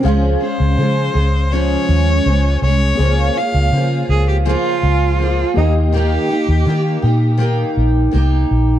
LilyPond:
<<
  \new Staff \with { instrumentName = "Violin" } { \time 4/4 \key des \lydian \tempo 4 = 82 r8 c''4. des''4. des''8~ | des''8 f''4 r2 r8 | r1 | }
  \new Staff \with { instrumentName = "Reed electric piano" } { \time 4/4 \key des \lydian <des' aes' f''>1 | <bes aes' des''>2.~ <bes aes' des''>8 <bes g' ees''>8~ | <bes g' ees''>2.~ <bes g' ees''>8 r8 | }
  \new Staff \with { instrumentName = "Cello" } { \time 4/4 \key des \lydian r1 | r4. aes'16 g'16 f'4. ees'8 | g'2 r2 | }
  \new Staff \with { instrumentName = "Steel-string acoustic guitar" } { \time 4/4 \key des \lydian <des f aes des' aes'>8 <aes des' aes'>8 <f aes des' aes'>8 <aes des' aes'>8 <des f aes des' aes'>4 <f aes des' aes'>8 <aes des' aes'>8 | <des f bes f' aes'>8 <bes f' aes'>8 <f bes f' aes'>4 <des f bes f' aes'>4 <f bes f' aes'>8 <bes ees' g'>8 | <ees bes ees' g'>8 <bes ees' g'>8 <ees bes ees' g'>8 <bes ees' g'>8 <ees bes ees' g'>4 <ees bes ees' g'>4 | }
  \new Staff \with { instrumentName = "Fingered electric bass" } { \clef bass \time 4/4 \key des \lydian des,8 r16 des,16 des8 des,4 ees,8 des,8 c,8 | des,8 r16 des,16 des8 des,8. r16 des,4 ees,8~ | ees,8 r16 ees,16 ees8 bes,4 bes,,8 c,8 bes,,8 | }
>>